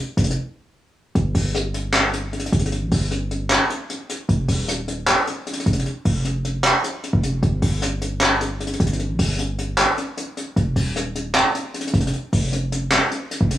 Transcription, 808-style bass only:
0.17 F1
1.15 G1
1.35 G1
2.52 G1
2.82 A#1
2.92 G1
4.29 F1
4.48 D#1
5.66 F1
6.05 F1
7.13 F1
7.43 G1
7.62 G1
8.80 G1
9.09 A#1
9.19 G1
10.56 F1
10.76 D#1
11.94 F1
12.33 F1
13.41 F1

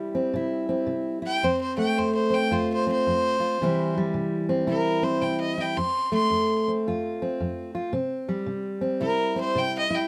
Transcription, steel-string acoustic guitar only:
Already playing: C3 G3 C4 E4
0.15 C4
0.34 C3 E4
0.69 C4
0.87 C3
1.22 E4
1.43 F2 C4
1.77 A3
1.98 F2
2.30 C4
2.51 F2 F4
2.87 C4
3.07 F2
3.40 F4
3.61 C3 E3 G3 C4 E4
3.98 G3
4.14 C3
4.49 C4
4.67 C3 E4
5.03 C4
5.22 C3
5.58 E4
5.77 F2 C4
6.12 A3
6.30 F2
6.68 C4
6.87 F2 F4
7.22 C4
7.40 F2
7.75 F4
7.93 C3 C4
8.29 G3
8.46 C3
8.81 C4
9.01 C3 E4
9.36 C4
9.55 C3
9.90 E4

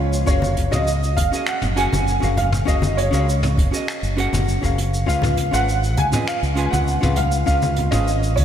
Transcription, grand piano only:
Already playing: C#5
0.27 C#5
0.72 D#5
1.17 F5
1.47 F#5
1.77 G#5
2.38 F5
2.67 D#5
2.97 C#5
5.08 F5
5.54 F#5
5.98 G#5
6.28 F5
6.64 G#5
6.71 F#5
7.17 F5
7.47 F5
7.91 D#5
8.36 C#5

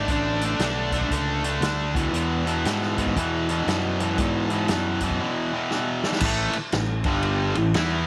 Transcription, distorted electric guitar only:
0.09 D3 A3 D4
0.43 D3 A3 D4
0.61 D3 A3 D4
0.93 D3 A3 D4
1.12 D3 A3 D4
1.44 D3 A3 D4
1.63 D3 A3 D4
1.94 E2 B2 E3
2.13 E2 B2 E3
2.46 E2 B2 E3
2.66 E2 B2 E3
2.98 E2 B2 E3
3.17 E2 B2 E3
3.49 E2 B2 E3
3.68 E2 B2 E3
4.00 E2 B2 E3
4.18 E2 B2 E3
4.51 E2 B2 E3
4.70 E2 B2 E3
5.02 E2 B2 E3
5.20 E2 B2 E3
5.53 E2 B2 E3
5.71 E2 B2 E3
6.05 E2 B2 E3
6.23 A2 E3 A3
6.56 muted distorted electric guitar stroke
6.74 A2 E3
7.06 G2 D3 G3
7.58 A2 E3
7.75 E3 B3 E4

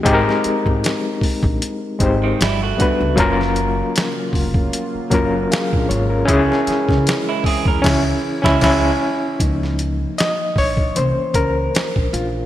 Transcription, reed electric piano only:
0.03 G#3 C4 D#4 G4
0.08 G#4
0.14 A#4
1.99 G#3 C4 D#4 G4
2.03 C5
2.77 G3 B3 D4 F#4
2.82 B4
3.16 F#3 A#3 C#4 F4
3.20 A#4
5.10 F#3 A#3 C#4 F4
5.14 A#4
5.52 G#4 F5
5.89 F4 C#5
6.10 C#4 A#4
6.25 C#4 E4
6.30 G#4
7.82 C#4 E4
8.42 C#4 E4
8.61 C#4 E4
9.40 F3 A#3 D#4
10.18 D#5
10.58 C#5
10.95 E3 A#3 C#4 C5
11.35 A#4
12.13 F4

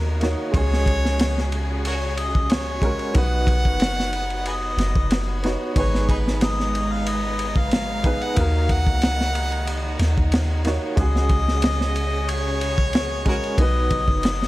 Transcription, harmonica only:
Already playing: A#4
0.56 C#5
1.87 F#4 A#4 C#5
2.19 D#5
2.52 C#5
3.16 F#5
4.47 G#4 B4 D#5
5.78 C#5
6.10 D#4 G#4 B4
6.43 D#5
6.93 F5
7.08 D#5
7.58 F5
8.23 F#5
8.38 F5
8.72 F#5
10.99 D#5
12.30 C#5
13.28 F#4 A#4 C#5
13.60 D#5

